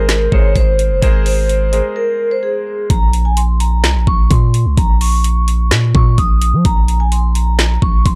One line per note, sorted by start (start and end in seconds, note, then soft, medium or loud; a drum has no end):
0.00 0.28 G#1 loud
0.00 0.32 G#3 loud
0.00 0.32 G#4 medium
0.00 0.29 A#4 medium
0.00 0.32 A#4 medium
0.00 0.33 C5 loud
0.09 snare loud
0.09 closed hi-hat medium
0.32 0.55 G#1 loud
0.32 0.82 G#3 medium
0.32 0.82 G#4 medium
0.32 0.82 A#4 medium
0.32 0.82 C5 medium
0.32 0.54 C#5 medium
0.32 kick loud
0.56 0.92 G#1 loud
0.56 1.00 C5 medium
0.56 kick medium
0.56 closed hi-hat medium
0.79 closed hi-hat medium
0.91 1.02 F#1 loud
1.02 1.81 G#1 loud
1.02 1.52 G#3 loud
1.02 1.52 G#4 medium
1.02 1.24 G#4 medium
1.02 1.52 A#4 medium
1.02 1.53 C5 loud
1.02 kick loud
1.02 closed hi-hat medium
1.26 1.92 C5 medium
1.26 open hi-hat medium
1.49 closed hi-hat medium
1.72 2.39 G#3 medium
1.72 2.39 G#4 medium
1.72 2.39 A#4 medium
1.72 2.40 C5 medium
1.72 closed hi-hat medium
1.96 2.29 A#4 medium
2.31 2.42 C5 medium
2.43 2.87 G#4 medium
2.90 3.85 A#1 loud
2.90 3.23 A#5 loud
2.90 kick loud
2.90 closed hi-hat medium
3.13 closed hi-hat medium
3.25 3.36 G#5 medium
3.37 3.58 C6 medium
3.37 closed hi-hat medium
3.60 4.04 A#5 medium
3.60 closed hi-hat medium
3.84 3.97 C2 loud
3.84 snare loud
3.84 closed hi-hat medium
3.95 4.07 A#1 loud
4.07 4.30 A#1 loud
4.07 4.29 C#6 medium
4.07 kick loud
4.31 4.67 A#2 loud
4.31 4.75 C6 medium
4.31 kick medium
4.31 closed hi-hat medium
4.54 closed hi-hat medium
4.66 4.77 C#2 loud
4.77 5.73 A#1 loud
4.77 4.99 A#5 medium
4.77 kick loud
4.77 closed hi-hat medium
5.01 5.67 C#6 medium
5.01 open hi-hat medium
5.24 closed hi-hat medium
5.48 closed hi-hat medium
5.71 5.94 A#2 loud
5.71 snare loud
5.71 closed hi-hat medium
5.95 6.17 A#2 loud
5.95 6.16 C#6 medium
5.95 kick loud
6.18 6.55 A#1 loud
6.18 6.62 D#6 medium
6.18 kick medium
6.18 closed hi-hat medium
6.42 closed hi-hat medium
6.53 6.64 F3 loud
6.65 7.78 A#1 loud
6.65 6.98 A#5 loud
6.65 kick loud
6.65 closed hi-hat medium
6.88 closed hi-hat medium
7.00 7.11 G#5 medium
7.12 7.33 C6 medium
7.12 closed hi-hat medium
7.35 7.79 A#5 medium
7.35 closed hi-hat medium
7.59 snare loud
7.59 closed hi-hat medium
7.82 8.05 A#1 loud
7.82 8.04 C#6 medium
7.82 kick loud
8.06 8.15 A#1 loud
8.06 8.15 C6 loud
8.06 kick medium
8.06 closed hi-hat medium